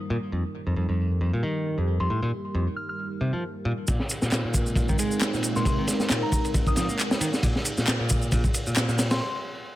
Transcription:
Already playing: analog synth pad G3 D#4 F4 A#4
0.10 picked electric bass A#2
0.32 picked electric bass F2, analog synth pad G4
0.67 picked electric bass F2
0.76 picked electric bass F2
0.89 picked electric bass F2
1.21 picked electric bass F2
1.33 picked electric bass A#2
1.43 picked electric bass D#3
1.78 picked electric bass F2
2.00 picked electric bass F2, synth bell C6
2.10 picked electric bass A2, synth bell C6
2.23 picked electric bass A#2
2.55 picked electric bass F2
2.76 synth bell F6
2.89 synth bell F6
3.21 picked electric bass C3
3.33 picked electric bass F3
3.65 picked electric bass A#2
3.87 picked electric bass A#2, analog synth pad G#3 C4 D#4 A#4, kick, ride, shaker
4.00 snare
4.10 ride, shaker
4.22 picked electric bass A#2, snare, shaker
4.32 picked electric bass A#2, snare, clap, ride, shaker
4.44 picked electric bass A#2
4.54 kick, ride, shaker
4.66 shaker
4.76 picked electric bass A#2, kick, ride, shaker
4.89 picked electric bass D#3, kick, shaker
4.99 picked electric bass G#3, ride, shaker
5.11 shaker
5.21 snare, clap, ride, shaker
5.33 picked electric bass A#2, snare, shaker
5.43 ride, shaker
5.56 picked electric bass A#2, synth bell C6, snare, shaker
5.65 picked electric bass C3, synth bell C6, kick, ride, shaker
5.78 picked electric bass D#3
5.87 snare, ride, shaker
6.00 snare, shaker
6.10 picked electric bass A#2, snare, clap, ride, shaker
6.23 synth bell A#5
6.32 synth bell A#5, kick, ride, shaker
6.45 ride, shaker
6.54 kick, ride, shaker
6.67 synth bell D#6, kick, shaker
6.76 picked electric bass F3, synth bell D#6, snare, ride, shaker
6.89 picked electric bass A#3, shaker
6.99 clap, ride, shaker
7.11 snare, shaker
7.21 picked electric bass D#3, ride, shaker
7.33 snare, shaker
7.43 picked electric bass A#2, kick, ride, shaker
7.56 snare
7.65 ride, shaker
7.77 picked electric bass A#2, snare, shaker
7.87 picked electric bass A#2, snare, clap, ride, shaker
8.00 picked electric bass A#2
8.09 kick, ride, shaker
8.22 shaker
8.32 picked electric bass A#2, kick, ride, shaker
8.44 kick, shaker
8.54 ride, shaker
8.67 picked electric bass A#2, shaker
8.76 picked electric bass A#2, snare, clap, ride, shaker
8.88 picked electric bass A#2, snare, shaker
8.99 snare, ride, shaker
9.11 synth bell C6, snare, ride, shaker
9.21 synth bell C6

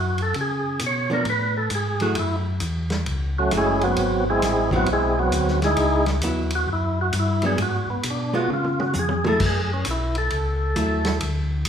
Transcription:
Already playing: tonewheel organ F#2 F#4
0.18 ride
0.22 tonewheel organ A4
0.34 tonewheel organ C#3, ride
0.41 tonewheel organ G#4
0.79 tonewheel organ B2, hi-hat pedal, ride
0.86 tonewheel organ C#5
1.10 hollow-body jazz guitar F3 B3 D4, tonewheel organ A#4
1.25 tonewheel organ A2, ride
1.30 tonewheel organ B4
1.57 tonewheel organ A4
1.70 tonewheel organ G#2, hi-hat pedal, ride
1.75 tonewheel organ G#4
2.00 hollow-body jazz guitar F#3 A3 E4 G#4, tonewheel organ F#4, ride
2.15 tonewheel organ F#2, ride
2.19 tonewheel organ E4
2.60 tonewheel organ E2, hi-hat pedal, ride
2.90 snare, ride
3.06 tonewheel organ C#2, ride
3.38 tonewheel organ F#3 A3 C#4 F#4
3.51 tonewheel organ F#1, hollow-body jazz guitar F#3 A3 E4 G#4, hi-hat pedal, ride
3.57 tonewheel organ G#3 C#4 E4 G#4
3.81 tonewheel organ F#3 B3 C4 F#4, ride
3.96 tonewheel organ G#1, ride
4.30 tonewheel organ G#3 C4 E4 G#4
4.42 tonewheel organ A1, snare, hi-hat pedal, ride
4.71 hollow-body jazz guitar F#3 C4 E4, kick
4.76 tonewheel organ F#3 B3 C4 F#4
4.86 tonewheel organ B1, ride
4.93 tonewheel organ G#3 C4 E4 G#4
5.19 tonewheel organ F#3 B3 C4 F#4
5.32 tonewheel organ D2, hi-hat pedal, ride
5.48 snare
5.62 tonewheel organ G#3 D#4 E4 G#4, snare, ride
5.77 tonewheel organ C#2, ride
6.06 snare, ride
6.21 tonewheel organ D#2, hollow-body jazz guitar F#3 B3 E4, hi-hat pedal, ride
6.50 ride
6.55 tonewheel organ F#4
6.67 tonewheel organ F#2
6.73 tonewheel organ E4
7.01 tonewheel organ F#4
7.13 tonewheel organ G2, hi-hat pedal, ride
7.19 tonewheel organ E4
7.42 hollow-body jazz guitar F#3 B3 D4, ride
7.46 tonewheel organ G#4
7.58 tonewheel organ G#2, ride
7.62 tonewheel organ F#4
7.89 tonewheel organ G#2 B3
8.03 tonewheel organ B2, hi-hat pedal, ride
8.10 tonewheel organ D4
8.34 hollow-body jazz guitar G#3 B3 F4, tonewheel organ F#4
8.50 tonewheel organ C#3 F4, mid tom
8.64 mid tom
8.80 tonewheel organ F#4, mid tom
8.93 tonewheel organ F2, hi-hat pedal, high tom
8.99 tonewheel organ G#4
9.09 high tom
9.24 hollow-body jazz guitar F#3 A3 E4 G#4, tonewheel organ A4, mid tom
9.40 tonewheel organ F#2, kick, crash
9.46 tonewheel organ G#4
9.74 tonewheel organ C#4
9.85 tonewheel organ B1, hi-hat pedal, ride
9.91 tonewheel organ E4
10.15 tonewheel organ A4, ride
10.30 tonewheel organ C#2, ride
10.76 tonewheel organ D#2, hollow-body jazz guitar F#3 A3 E4, hi-hat pedal, ride
11.05 snare, ride
11.21 tonewheel organ D2, ride
11.65 tonewheel organ F#2, hi-hat pedal, ride

